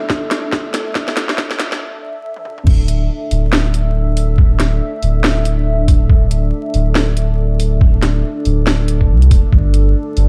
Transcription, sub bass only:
2.67 D1
3.31 D1
4.38 D1
5.02 D1
6.10 D1
6.74 D1
7.81 D1
8.45 D1
9.10 C2
9.31 E1
9.52 G1
10.17 G1

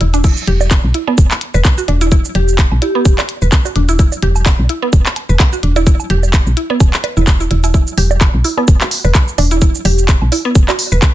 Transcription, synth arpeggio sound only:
0.01 E4
0.14 D4
0.24 E4
0.48 G4
0.94 E4
1.08 B3
1.54 B4
1.78 F#4
1.88 D4
2.01 E4
2.12 E4
2.35 G4
2.82 E4
2.95 B3
3.42 B4
3.65 F#4
3.76 D4
3.89 E4
3.99 E4
4.22 G4
4.69 E4
4.82 B3
5.29 B4
5.53 F#4
5.63 D4
5.76 E4
5.87 E4
6.10 G4
6.57 E4
6.70 B3
7.04 B4
7.17 E4
7.40 E4
7.51 E4
7.64 E4
7.74 E4
7.98 G4
8.44 E4
8.58 B3
8.81 F#4
9.04 B4
9.38 D4
9.51 E4
9.62 E4
9.85 G4
10.32 E4
10.45 B3
10.68 F#4
10.92 B4

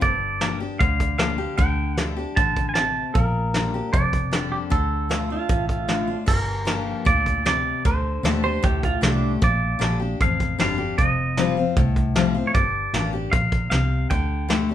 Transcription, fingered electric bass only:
0.02 G1
0.81 D2
1.59 D2
2.37 A1
3.15 A#1
3.93 F1
4.72 D2
5.49 A1
6.28 G1
7.06 D2
7.85 D2
8.23 D#2
8.63 D2
9.02 C2
9.42 A#1
9.80 A#1
10.20 A1
10.60 G1
10.99 F1
11.76 C2
12.54 G1
12.93 A1
13.33 A#1
13.71 C2
14.10 D2

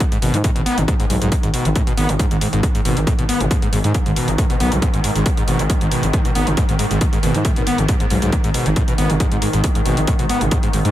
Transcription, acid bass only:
0.00 G#2
0.12 G#2
0.22 B2
0.34 G#3
0.44 A2
0.56 B2
0.66 B3
0.78 G#2
0.88 G#2
0.99 G#2
1.10 G#2
1.21 G#2
1.32 G#2
1.43 G#2
1.54 B2
1.65 G#3
1.76 A2
1.87 B2
1.97 B3
2.09 G#2
2.19 G#2
2.31 G#2
2.41 G#2
2.53 G#2
2.63 G#2
2.75 G#2
2.85 B2
2.97 G#3
3.07 A2
3.19 B2
3.29 B3
3.40 G#2
3.51 G#2
3.62 G#2
3.73 G#2
3.84 G#2
3.95 G#2
4.06 G#2
4.17 B2
4.28 G#3
4.38 A2
4.50 B2
4.60 B3
4.72 G#2
4.82 G#2
4.94 G#2
5.04 G#2
5.16 G#2
5.26 G#2
5.37 G#2
5.48 B2
5.59 G#3
5.70 G#2
5.81 G#2
5.92 B2
6.03 G#3
6.14 A2
6.25 B2
6.35 B3
6.47 G#2
6.57 G#2
6.69 G#2
6.79 G#2
6.91 G#2
7.01 G#2
7.13 G#2
7.23 B2
7.35 G#3
7.45 A2
7.57 B2
7.67 B3
7.79 G#2
7.89 G#2
8.00 G#2
8.11 G#2
8.22 G#2
8.33 G#2
8.44 G#2
8.55 B2
8.66 G#3
8.76 A2
8.88 B2
8.98 B3
9.10 G#2
9.20 G#2
9.32 G#2
9.42 G#2
9.54 G#2
9.64 G#2
9.76 G#2
9.86 B2
9.97 G#3
10.08 A2
10.19 B2
10.30 B3
10.41 G#2
10.52 G#2
10.63 G#2
10.73 G#2
10.85 G#2

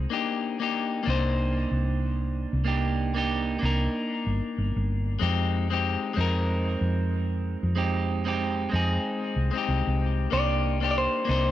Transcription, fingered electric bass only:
1.07 C2
1.71 C2
2.53 C2
3.63 C2
4.26 G1
4.58 G1
4.76 G1
5.22 F2
6.17 F2
6.81 F2
7.63 F2
8.73 F2
9.36 C2
9.68 C2
9.87 C2
10.32 C2
11.29 C2

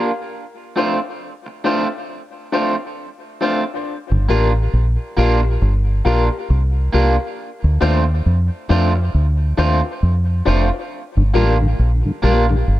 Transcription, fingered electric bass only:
4.11 G1
4.29 A1
4.73 A#1
5.18 A#1
5.62 G1
6.06 A#1
6.50 C2
6.94 C2
7.64 D2
7.82 D#2
8.26 F2
8.70 F2
9.14 D2
9.58 D#2
10.03 F2
10.47 F1
11.17 G1
11.35 A1
11.79 A#1
12.24 A#1
12.68 G1

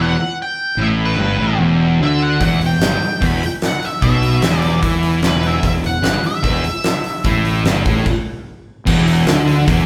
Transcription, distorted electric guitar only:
Already playing: E2
0.78 A2
1.17 G2
1.37 A2
1.59 E2
1.99 D3
2.40 E2
2.61 E2
2.82 G2
3.01 muted distorted electric guitar stroke
3.21 E2
4.02 B2
4.42 E2
4.81 E3
5.22 E2
5.62 E2
5.83 E2
6.03 G2
6.23 muted distorted electric guitar stroke
6.42 E2
7.24 A2
7.65 G2
7.85 A2
8.86 E2
9.26 D3
9.66 E2

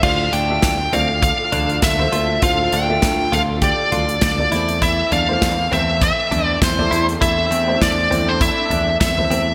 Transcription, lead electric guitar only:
0.03 F5
0.33 G5
0.93 F5
1.23 F5
1.84 E5
2.43 F5
2.73 G5
3.33 F5
3.64 D5
4.23 D5
4.83 E5
5.13 F5
5.73 E5
6.04 E5
6.46 D5
6.64 C5
7.22 E5
7.82 D5
8.29 C5
8.41 E5
9.01 E5

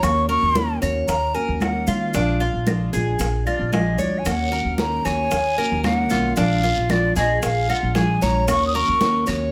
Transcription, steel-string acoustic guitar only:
0.02 D#3 A#3 C#4 F#4
0.28 A#3 C#4 F#4
0.55 D#3 A#3 C#4 F#4
0.81 A#3 C#4 F#4
1.08 muted steel-string acoustic guitar stroke
1.35 A#3 C#4 F#4
1.61 D#3 A#3 C#4 F#4
2.14 F3 G#3 D4 F4
2.40 G#3 D4 F4
2.66 F3 G#3 D4 F4
2.92 G#3 D4 F4
3.19 muted steel-string acoustic guitar stroke
3.46 G#3 D4 F4
3.73 F3 G#3 D4 F4
4.25 D#3 A#3 C#4 F#4
4.51 A#3 C#4 F#4
4.78 D#3 A#3 C#4 F#4
5.05 A#3 C#4 F#4
5.32 muted steel-string acoustic guitar stroke
5.58 A#3 C#4 F#4
5.83 D#3 A#3 C#4 F#4
6.36 F3 G#3 D4 F4
6.63 G#3 D4 F4
6.89 F3 G#3 D4 F4
7.16 G#3 D4 F4
7.42 muted steel-string acoustic guitar stroke
7.68 G#3 D4 F4
7.94 F3 G#3 D4 F4
8.47 D#3 A#3 C#4 F#4
8.74 A#3 C#4 F#4
9.00 D#3 A#3 C#4 F#4
9.27 A#3 C#4 F#4

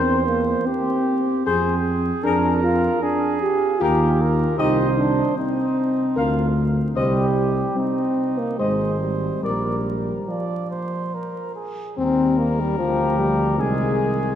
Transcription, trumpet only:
Already playing: C5
1.46 C5
2.25 A#4
3.82 A#4
4.58 D#5
6.18 F5
6.96 D#5
8.60 D#5
9.44 D5
11.97 A#4
13.60 G#4

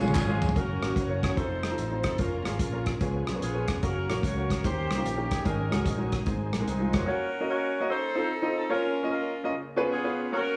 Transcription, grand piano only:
0.01 G#3 C#4 F4 G#4
0.28 G#3 C#4 F4 G#4
0.55 A#3 C#4 F#4 A#4
0.82 A#3 C#4 F#4 A#4
1.09 A#3 C#4 F#4 C#5
1.36 C4 D#4 F4 A4
1.70 C4 D#4 F4 A4
1.91 C4 D#4 F4 C5
2.19 A#3 C#4 F4 A#4
2.45 A#3 C#4 F4 G#4
2.72 A#3 C#4 F4 A#4
3.01 C#3 B3 C#4 F4 G#4
3.35 B3 C#4 F4 A#4
3.54 B3 C#4 F4 G#4
3.83 A#3 C#4 F#4 A#4
4.10 A#3 C#4 F#4 A#4
4.37 A#3 C#4 F#4 A#4
4.64 D#3 A#3 C#4 D#4 G4
4.97 A#3 C#4 D#4 F4
5.17 A#3 C#4 D#4 G4
5.44 G#2 G#3 C#4 D#4 G#4
5.71 G#3 C#4 D#4 F#4
5.98 G#3 C#4 D#4 F#4
6.26 G#2 G#3 C4 D#4 G#4
6.60 G#3 C4 D#4 A#4
6.80 G#3 C4 D#4 F4
7.06 A#3 C#4 F#4 A#4 C#5
7.40 A#3 C#4 F#4 A#4 D#5
7.80 A#3 C#4 F#4 A#4 D#5
8.15 C4 D#4 F4 A4 C5
8.42 C4 D#4 F4 A4 D#5
8.69 A#3 C#4 F4 A#4 C#5
9.03 A#3 C#4 F4 A#4 D#5
9.44 A#3 C#4 F4 A#4 D#5
9.51 C#3
9.76 B3 C#4 F4 G#4 B4
10.04 B3 C#4 F4 G#4 B4
10.32 A#3 C#4 F#4 A#4 C#5

